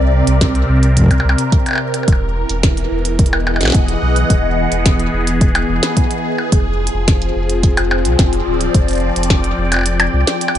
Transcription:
Already playing: C2 C3 C4 A#4 D5 E5
0.27 C2, closed hi-hat
0.41 kick, snare, closed hi-hat
0.55 closed hi-hat
0.69 C2
0.83 closed hi-hat
0.97 kick, closed hi-hat
0.99 kick
1.01 kick
1.04 kick
1.06 kick
1.08 kick, closed hi-hat, percussion blips
1.20 percussion blips
1.25 C2
1.29 percussion blips
1.38 closed hi-hat
1.52 kick, closed hi-hat
1.66 closed hi-hat, percussion blips
1.69 percussion blips
1.71 percussion blips
1.73 percussion blips
1.75 percussion blips
1.78 percussion blips
1.94 closed hi-hat, percussion blips
2.03 percussion blips
2.08 E1 E3, kick, closed hi-hat
2.12 percussion blips
2.28 B3
2.49 E1, closed hi-hat
2.63 kick, snare, closed hi-hat
2.77 closed hi-hat
2.91 E1 G#4
3.02 D#5, closed hi-hat
3.19 kick, closed hi-hat
3.26 F#5, closed hi-hat
3.33 percussion blips
3.47 percussion blips
3.56 percussion blips
3.61 B1, snare, closed hi-hat
3.63 snare
3.65 snare, percussion blips
3.68 snare
3.70 snare
3.72 E1, kick, snare, closed hi-hat
3.88 closed hi-hat
4.02 B1
4.16 closed hi-hat
4.30 E1, kick, closed hi-hat
4.72 E1, closed hi-hat
4.86 kick, snare, closed hi-hat
5.00 closed hi-hat
5.13 E1
5.27 closed hi-hat
5.41 kick, closed hi-hat
5.55 closed hi-hat, percussion blips
5.69 E1
5.83 snare, closed hi-hat
5.97 kick, closed hi-hat
6.11 closed hi-hat
6.38 percussion blips
6.52 F1 F3, kick, closed hi-hat
6.87 C4, closed hi-hat
6.94 F1
7.08 kick, snare, closed hi-hat
7.22 closed hi-hat
7.36 F1
7.50 closed hi-hat
7.63 kick, closed hi-hat
7.77 closed hi-hat, percussion blips
7.88 D5, percussion blips
8.05 C2, closed hi-hat
8.19 F1, kick, snare, closed hi-hat
8.33 closed hi-hat
8.47 D1
8.52 G5
8.61 closed hi-hat
8.75 F1, kick, closed hi-hat
8.88 closed hi-hat
8.91 closed hi-hat
8.93 closed hi-hat
8.95 closed hi-hat
9.00 closed hi-hat
9.16 F1, closed hi-hat
9.23 closed hi-hat
9.30 kick, snare
9.44 closed hi-hat
9.58 F1
9.72 closed hi-hat, percussion blips
9.74 percussion blips
9.76 percussion blips
9.79 percussion blips
9.81 percussion blips
9.83 closed hi-hat, percussion blips
10.00 closed hi-hat, percussion blips
10.13 C2
10.27 snare, closed hi-hat
10.41 closed hi-hat
10.48 percussion blips
10.55 D1, closed hi-hat

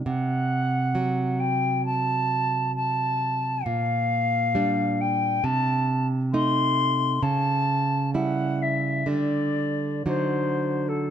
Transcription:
0.05 C3 F#5
0.95 F#3
1.40 G5
1.86 A5
2.76 A5
3.65 A#2 F5
4.55 G3 D4
5.01 G5
5.44 C3 A5
6.33 A3 D#4 C6
7.23 C#3 A5
8.14 G3 E4 F#5
8.62 E5
9.06 D3 G3 D4 D5
10.06 D3 F#3 D#4 C5
10.89 A4

